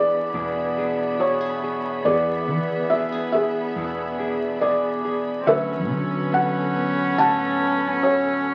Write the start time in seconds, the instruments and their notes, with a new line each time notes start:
Already playing: fretless electric bass E3, nylon-string guitar E3 B3 D4 G#4, clean electric guitar B3 D4 G#4, cello B3, felt piano G#4 D5, string section G#4 E5 B5
0.34 fretless electric bass E2, nylon-string guitar B2, clean electric guitar B3 D4 G#4
0.77 clean electric guitar D4, nylon-string guitar G#4
1.20 nylon-string guitar F#4, clean electric guitar G#4, felt piano C#5
1.41 nylon-string guitar G#4
1.64 nylon-string guitar G#4
2.05 fretless electric bass E2, nylon-string guitar E3 G#4, clean electric guitar B3, felt piano G#4 D5
2.47 fretless electric bass E3, clean electric guitar B3, nylon-string guitar B3
2.90 clean electric guitar B3 D4 G#4, nylon-string guitar F#4, felt piano E5
3.12 nylon-string guitar G#4
3.32 nylon-string guitar D4, felt piano G#4 E5
3.76 fretless electric bass E2, nylon-string guitar B2, clean electric guitar B3 D4 G#4
4.19 clean electric guitar D4, nylon-string guitar G#4
4.61 nylon-string guitar G#4, clean electric guitar G#4, felt piano D5
5.05 nylon-string guitar G#4
5.40 cello C4
5.46 fretless electric bass D2, nylon-string guitar D3 F#4, clean electric guitar F#3, cello C#4, string section A4 B5, felt piano B4 E5
5.89 fretless electric bass D3, nylon-string guitar F#3, clean electric guitar B3
6.32 clean electric guitar B3 A4, felt piano F#5
6.76 nylon-string guitar B3
7.18 fretless electric bass D2, nylon-string guitar A2, clean electric guitar B3 A4, felt piano F#5 A5
8.03 nylon-string guitar F#4, clean electric guitar A4, felt piano C#5